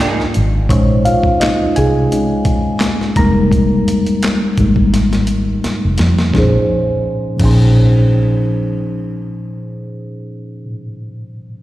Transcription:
Already playing: reed electric piano F3 G#3 A#3 D4 D#4 F4 D5 D#5 F5
0.00 clean electric guitar A#3 D#4 G#4, closed hi-hat
0.20 snare
0.34 fingered electric bass G#1, closed hi-hat
0.69 fingered electric bass A#1, reed electric piano G#3 C#4 D#4 C5 C#5, kick, closed hi-hat
1.05 reed electric piano F4 F5, closed hi-hat
1.23 kick
1.40 reed electric piano D#4 D#5, snare, clap, closed hi-hat
1.76 fingered electric bass C2, reed electric piano G#4 G#5, closed hi-hat
2.12 reed electric piano G#3 C4 C#4 D#4, closed hi-hat
2.45 kick, closed hi-hat
2.80 snare, clap, closed hi-hat
3.01 snare
3.16 fingered electric bass F1, reed electric piano G3 G#3 A#3 D#4 A#4 A#5, kick, closed hi-hat
3.52 kick, closed hi-hat
3.88 closed hi-hat
4.06 closed hi-hat
4.23 snare, clap, closed hi-hat
4.58 fingered electric bass G#1, reed electric piano G3 G#3 A#3 D#4, kick, closed hi-hat
4.76 kick
4.94 snare, closed hi-hat
5.13 snare, closed hi-hat
5.27 closed hi-hat
5.64 muted fingered electric bass stroke, snare, closed hi-hat
5.85 fingered electric bass F1
5.98 fingered electric bass F2, snare, closed hi-hat
6.19 snare
6.30 reed electric piano A#2 F3, kick
6.34 fingered electric bass A#1, reed electric piano C#4 D#4 G#4, snare
6.40 reed electric piano C5
7.36 reed electric piano A#2 F3 C#4, kick, crash
7.41 fingered electric bass A#1, reed electric piano D#4 G#4
7.45 reed electric piano C5

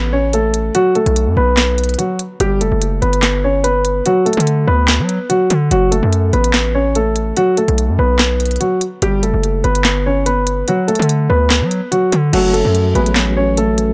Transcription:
Already playing: 808-style bass A1, grand piano B3 B4
0.13 grand piano C#4 C#5
0.33 grand piano A3 A4, closed hi-hat
0.54 closed hi-hat
0.75 grand piano F#3 F#4, closed hi-hat
0.95 grand piano A3 A4, closed hi-hat
1.06 808-style bass B1, closed hi-hat
1.16 closed hi-hat
1.27 808-style bass F#2
1.37 808-style bass B1, grand piano B3 B4
1.57 snare, clap, closed hi-hat
1.78 closed hi-hat
1.84 closed hi-hat
1.89 closed hi-hat
1.94 closed hi-hat
1.98 grand piano F#3 F#4, closed hi-hat
2.19 closed hi-hat
2.40 808-style bass G1, grand piano G3 G4, closed hi-hat
2.61 808-style bass F#1, grand piano A3 A4, closed hi-hat
2.72 808-style bass F#1
2.82 closed hi-hat
3.02 808-style bass G1, grand piano B3 B4, closed hi-hat
3.13 closed hi-hat
3.22 snare, clap, closed hi-hat
3.44 grand piano C#4 C#5
3.64 grand piano B3 B4, closed hi-hat
3.85 closed hi-hat
4.06 grand piano F#3 F#4, closed hi-hat
4.26 grand piano A3 A4, closed hi-hat
4.33 closed hi-hat
4.37 808-style bass D3, closed hi-hat
4.47 closed hi-hat
4.67 808-style bass D2, grand piano B3 B4
4.88 snare, clap, closed hi-hat
4.99 808-style bass F#3
5.09 closed hi-hat
5.30 grand piano F#3 F#4, closed hi-hat
5.50 808-style bass D3, closed hi-hat
5.71 808-style bass F#1, grand piano F#3 F#4, closed hi-hat
5.91 grand piano A3 A4, closed hi-hat
6.03 808-style bass F#2
6.13 closed hi-hat
6.33 808-style bass A1, grand piano B3 B4, closed hi-hat
6.44 closed hi-hat
6.53 snare, clap, closed hi-hat
6.75 grand piano C#4 C#5
6.95 grand piano A3 A4, closed hi-hat
7.16 closed hi-hat
7.37 grand piano F#3 F#4, closed hi-hat
7.57 grand piano A3 A4, closed hi-hat
7.68 808-style bass B1, closed hi-hat
7.78 closed hi-hat
7.89 808-style bass F#2
7.99 808-style bass B1, grand piano B3 B4
8.19 snare, clap, closed hi-hat
8.40 closed hi-hat
8.46 closed hi-hat
8.51 closed hi-hat
8.56 closed hi-hat
8.60 grand piano F#3 F#4, closed hi-hat
8.81 closed hi-hat
9.02 808-style bass G1, grand piano G3 G4, closed hi-hat
9.23 808-style bass F#1, grand piano A3 A4, closed hi-hat
9.34 808-style bass F#1
9.44 closed hi-hat
9.64 808-style bass G1, grand piano B3 B4, closed hi-hat
9.75 closed hi-hat
9.84 snare, clap, closed hi-hat
10.06 grand piano C#4 C#5
10.26 grand piano B3 B4, closed hi-hat
10.47 closed hi-hat
10.68 grand piano F#3 F#4, closed hi-hat
10.88 grand piano A3 A4, closed hi-hat
10.95 closed hi-hat
10.99 808-style bass D3, closed hi-hat
11.09 closed hi-hat
11.30 808-style bass D2, grand piano B3 B4
11.50 snare, clap, closed hi-hat
11.61 808-style bass F#3
11.71 closed hi-hat
11.92 grand piano F#3 F#4, closed hi-hat
12.12 808-style bass D3, closed hi-hat
12.33 808-style bass F#1, tine electric piano F#3 A3 C#4 F#4 A4, grand piano F#3 F#4, closed hi-hat, crash
12.53 grand piano A3 A4, closed hi-hat
12.65 808-style bass F#2
12.75 closed hi-hat
12.95 808-style bass A1, tine electric piano F#3 A3 C#4 G#4 B4, grand piano B3 B4, closed hi-hat
13.06 closed hi-hat
13.15 snare, clap, closed hi-hat
13.37 grand piano C#4 C#5
13.57 grand piano A3 A4, closed hi-hat
13.78 closed hi-hat

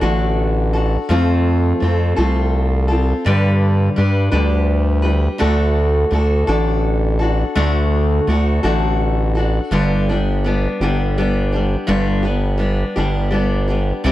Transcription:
0.01 analog synth bass A1, steel-string acoustic guitar D3 A3 D4 F#4 A4
0.73 steel-string acoustic guitar D4 F#4 A4
1.09 analog synth bass F2, steel-string acoustic guitar F3 A3 C4 F4 A4
1.80 analog synth bass F2, steel-string acoustic guitar A3 C4 F4 A4
2.16 analog synth bass C2, steel-string acoustic guitar F3 A3 C4 F4 A4
2.88 steel-string acoustic guitar C4 F4 A4
3.25 steel-string acoustic guitar G2 D3 G3 D4 G4 B4, analog synth bass G2
3.96 analog synth bass G2, steel-string acoustic guitar G3 D4 G4 B4
4.31 analog synth bass D2, steel-string acoustic guitar G2 D3 G3 D4 G4 B4
5.02 steel-string acoustic guitar G3 D4 G4 B4
5.38 analog synth bass D2, steel-string acoustic guitar D3 A3 D4 F#4 A4
6.11 analog synth bass D2, steel-string acoustic guitar A3 D4 F#4 A4
6.47 analog synth bass A1, steel-string acoustic guitar D3 A3 D4 F#4 A4
7.19 steel-string acoustic guitar D4 F#4 A4
7.55 analog synth bass D2, steel-string acoustic guitar D3 A3 D4 F#4 A4
8.27 analog synth bass D2, steel-string acoustic guitar A3 D4 F#4 A4
8.63 analog synth bass A1, steel-string acoustic guitar D3 A3 D4 F#4 A4
9.35 steel-string acoustic guitar D4 F#4 A4
9.71 analog synth bass G1, steel-string acoustic guitar G2 D3 G3 B3 D4 G4
10.09 steel-string acoustic guitar G3 B3 D4 G4
10.44 steel-string acoustic guitar G3 B3 D4 G4
10.81 analog synth bass G1, steel-string acoustic guitar G2 D3 G3 B3 D4 G4
11.18 steel-string acoustic guitar G3 B3 D4 G4
11.52 steel-string acoustic guitar G3 B3 D4 G4
11.87 analog synth bass G1, steel-string acoustic guitar G2 D3 G3 B3 D4 G4
12.23 steel-string acoustic guitar G3 B3 D4 G4
12.58 steel-string acoustic guitar G3 B3 D4 G4
12.96 analog synth bass G1, steel-string acoustic guitar G2 D3 G3 B3 D4 G4
13.31 steel-string acoustic guitar G3 B3 D4 G4
13.68 steel-string acoustic guitar G3 B3 D4 G4
14.04 analog synth bass C2, steel-string acoustic guitar C3 G3 C4 E4 G4

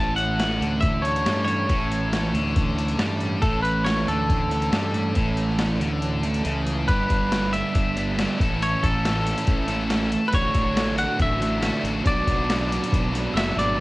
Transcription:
Already playing: fingered electric bass A1, overdriven electric guitar A2 E3 A3 C#4 E4 A4, clean electric guitar A5
0.16 clean electric guitar F#5, closed hi-hat
0.40 snare, closed hi-hat
0.59 fingered electric bass D2, distorted electric guitar D3, closed hi-hat
0.81 clean electric guitar E5, kick, closed hi-hat
1.02 overdriven electric guitar A2 E3 A3 C#4 E4 A4, clean electric guitar C#5, closed hi-hat
1.16 closed hi-hat
1.25 fingered electric bass G2, overdriven electric guitar A2 E3 A3 C#4 E4 A4, distorted electric guitar G3, snare, closed hi-hat
1.45 clean electric guitar C#5, closed hi-hat
1.68 fingered electric bass A1, overdriven electric guitar A2 E3 A3 C#4 E4 A4, kick, closed hi-hat
1.92 closed hi-hat
2.13 snare, closed hi-hat
2.33 fingered electric bass D2, distorted electric guitar D3, closed hi-hat
2.56 kick, closed hi-hat
2.76 overdriven electric guitar A2 E3 A3 C#4 E4 A4, closed hi-hat
2.89 closed hi-hat
2.97 fingered electric bass G2, overdriven electric guitar A2 E3 A3 C#4 E4 A4, distorted electric guitar G3, snare, closed hi-hat
3.21 closed hi-hat
3.41 fingered electric bass A1, overdriven electric guitar A2 E3 A3 C#4 E4 A4, clean electric guitar A4, kick, closed hi-hat
3.62 clean electric guitar B4, closed hi-hat
3.85 clean electric guitar C#5, snare, closed hi-hat
4.07 fingered electric bass D2, distorted electric guitar D3, clean electric guitar A4, closed hi-hat
4.30 kick, closed hi-hat
4.50 overdriven electric guitar A2 E3 A3 C#4 E4 A4, closed hi-hat
4.62 closed hi-hat
4.71 fingered electric bass G2, overdriven electric guitar A2 E3 A3 C#4 E4 A4, distorted electric guitar G3, snare, closed hi-hat
4.94 closed hi-hat
5.15 fingered electric bass A1, overdriven electric guitar A2 E3 A3 C#4 E4 A4, kick, closed hi-hat
5.37 closed hi-hat
5.49 snare
5.59 snare, closed hi-hat
5.80 fingered electric bass D2, distorted electric guitar D3, closed hi-hat
6.02 closed hi-hat
6.23 overdriven electric guitar A2 E3 A3 C#4 E4 A4, closed hi-hat
6.34 closed hi-hat
6.44 fingered electric bass C#2, overdriven electric guitar A2 E3 A3 C#4 E4 A4, distorted electric guitar C#3, closed hi-hat
6.67 closed hi-hat
6.88 fingered electric bass G1, overdriven electric guitar G2 D3 G3 B3 D4, distorted electric guitar G4, clean electric guitar B4, kick, closed hi-hat
7.10 fingered electric bass G1, kick, closed hi-hat
7.32 snare, closed hi-hat
7.53 distorted electric guitar G2 D3 G3 B3 D4 G4, clean electric guitar E5, closed hi-hat
7.75 fingered electric bass G1, kick, closed hi-hat
7.96 overdriven electric guitar G2 D3 G3 B3 D4, closed hi-hat
8.17 overdriven electric guitar G2 D3 G3 B3 D4, snare, closed hi-hat
8.21 distorted electric guitar G4
8.38 fingered electric bass A1, overdriven electric guitar A2 E3 A3 C#4 E4, distorted electric guitar A4, kick, closed hi-hat
8.62 clean electric guitar C#5, closed hi-hat
8.83 fingered electric bass A1, clean electric guitar A4, kick, closed hi-hat
9.03 distorted electric guitar A2 E3 A3 C#4 A4, snare, closed hi-hat
9.26 closed hi-hat
9.38 closed hi-hat
9.46 fingered electric bass A1, overdriven electric guitar A2 E3 A3 C#4 E4, kick, closed hi-hat
9.67 overdriven electric guitar A2 E3 A3 C#4 E4, distorted electric guitar A4, snare, closed hi-hat
9.90 snare, closed hi-hat
10.12 closed hi-hat
10.28 overdriven electric guitar A2, clean electric guitar B4
10.33 fingered electric bass A1, overdriven electric guitar D3 A3 D4 F#4, analog synth pad D4 F#4 A5 C#6, clean electric guitar C#5, kick, closed hi-hat
10.55 fingered electric bass A1, kick, closed hi-hat
10.77 snare, closed hi-hat
10.96 distorted electric guitar D3 A3 D4 F#4, clean electric guitar F#5, closed hi-hat
11.00 distorted electric guitar A2
11.19 fingered electric bass A1, clean electric guitar E5, kick, closed hi-hat
11.40 overdriven electric guitar A2 D3 A3 D4 F#4, closed hi-hat
11.61 overdriven electric guitar A2 D3 A3 D4 F#4, snare, closed hi-hat
11.83 fingered electric bass A1, closed hi-hat
12.03 fingered electric bass B1, overdriven electric guitar B2 F#3 B3 D4 F#4, analog synth pad F#4 B5, clean electric guitar D5, kick, closed hi-hat
12.27 fingered electric bass B1, kick, closed hi-hat
12.50 snare, closed hi-hat
12.68 distorted electric guitar F#3 B3 D4 F#4
12.72 distorted electric guitar B2, closed hi-hat
12.84 closed hi-hat
12.92 fingered electric bass B1, kick, closed hi-hat
13.12 overdriven electric guitar B2 F#3 B3 D4 F#4, snare, closed hi-hat
13.33 fingered electric bass F#1, overdriven electric guitar B2 F#3 B3 D4 F#4, glockenspiel E6
13.37 clean electric guitar E5, snare, closed hi-hat
13.56 fingered electric bass G#1, clean electric guitar D5, glockenspiel D6, closed hi-hat
13.77 overdriven electric guitar A2 E3

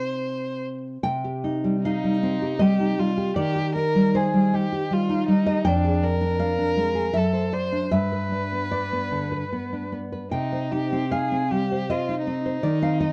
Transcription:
Already playing: nylon-string guitar C3 C4 D#4, violin C5
1.03 nylon-string guitar C3 G5
1.24 nylon-string guitar G4
1.44 nylon-string guitar D#4
1.64 nylon-string guitar G3
1.83 violin D#4, nylon-string guitar D#4 F5
2.04 nylon-string guitar G3
2.23 nylon-string guitar C4
2.42 nylon-string guitar G4
2.59 nylon-string guitar G3 D#5, violin G4
2.80 nylon-string guitar D#4
2.99 nylon-string guitar G3, violin F4
3.18 nylon-string guitar G4
3.36 nylon-string guitar D#3 D5, violin G4
3.56 nylon-string guitar G4
3.76 nylon-string guitar D#4, violin A#4
3.95 nylon-string guitar G3
4.15 nylon-string guitar D#4 C5, violin G#4
4.34 nylon-string guitar G3
4.54 nylon-string guitar D#4, violin G4
4.72 nylon-string guitar G4
4.91 nylon-string guitar G3, violin F4
5.09 nylon-string guitar D#4
5.28 nylon-string guitar G3, violin D#4
5.46 nylon-string guitar G4 D#5
5.65 nylon-string guitar F2 G5, violin D4
5.84 nylon-string guitar G#4
6.03 violin A#4, nylon-string guitar D5
6.21 nylon-string guitar D4
6.39 nylon-string guitar D5 F5
6.59 nylon-string guitar D4
6.77 nylon-string guitar G#3
6.95 nylon-string guitar G#4
7.13 nylon-string guitar F#2 E5, violin A4
7.33 nylon-string guitar C5
7.53 violin C5, nylon-string guitar D5
7.72 nylon-string guitar D4
7.91 nylon-string guitar G2 E5, violin B4
8.12 nylon-string guitar B4
8.32 nylon-string guitar D4
8.52 nylon-string guitar B3
8.71 nylon-string guitar D4 D5
8.92 nylon-string guitar B3
9.12 nylon-string guitar D3
9.32 nylon-string guitar B4
9.52 nylon-string guitar B3
9.73 nylon-string guitar D4
9.92 nylon-string guitar B3
10.12 nylon-string guitar B4
10.31 nylon-string guitar C3 G5, violin D#4
10.52 nylon-string guitar C5
10.71 nylon-string guitar D#4, violin G4
10.92 nylon-string guitar C4
11.11 nylon-string guitar D#4 F5, violin G#4
11.32 nylon-string guitar C4
11.51 nylon-string guitar G3, violin G4
11.72 nylon-string guitar C5
11.90 nylon-string guitar C4 D#5, violin F4
12.09 nylon-string guitar D#4
12.27 nylon-string guitar C4, violin D#4
12.46 nylon-string guitar C5
12.63 nylon-string guitar D#3 D5
12.82 nylon-string guitar C4 F5
13.00 nylon-string guitar D#4 D#5

